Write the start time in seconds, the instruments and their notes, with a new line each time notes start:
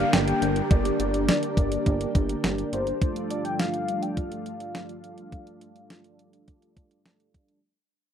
Already playing: string machine D3 G3 A#3 G4, analog polysynth D4 G4 A#4 D5, downlifter
0.13 analog synth bass G1, soft synth lead G5, snare, closed hi-hat
0.28 closed hi-hat
0.42 analog synth bass G1, closed hi-hat
0.56 closed hi-hat
0.71 analog synth bass G1, soft synth lead D5, kick, closed hi-hat
0.85 closed hi-hat
1.00 analog synth bass G1, closed hi-hat
1.14 closed hi-hat
1.28 soft synth lead D5, snare, closed hi-hat
1.43 closed hi-hat
1.57 analog synth bass G1, kick, closed hi-hat
1.72 closed hi-hat
1.86 analog synth bass G1, kick, closed hi-hat
2.01 closed hi-hat
2.15 analog synth bass G1, kick, closed hi-hat
2.29 closed hi-hat
2.44 analog synth bass G1, snare, closed hi-hat
2.58 closed hi-hat
2.73 analog synth bass G1, soft synth lead C5, closed hi-hat
2.87 closed hi-hat
3.02 string machine G2 F3 A3 F4, analog polysynth G3 D4 F4 A4 D5, kick, closed hi-hat
3.16 closed hi-hat
3.30 soft synth lead D5, closed hi-hat
3.45 soft synth lead G5, closed hi-hat
3.59 soft synth lead F5, snare, closed hi-hat
3.74 closed hi-hat
3.88 closed hi-hat
4.02 soft synth lead G5, closed hi-hat
4.17 soft synth lead F5, kick, closed hi-hat
4.32 closed hi-hat
4.46 closed hi-hat
4.60 closed hi-hat
4.75 snare, closed hi-hat
4.89 closed hi-hat
5.04 closed hi-hat
5.18 closed hi-hat
5.32 kick, closed hi-hat
5.47 closed hi-hat
5.61 closed hi-hat
5.76 closed hi-hat
5.90 snare, closed hi-hat
6.04 closed hi-hat
6.19 closed hi-hat
6.33 closed hi-hat
6.48 kick, closed hi-hat
6.62 closed hi-hat
6.77 kick, closed hi-hat
6.91 closed hi-hat
7.06 snare, closed hi-hat
7.20 closed hi-hat
7.34 kick, closed hi-hat
7.48 closed hi-hat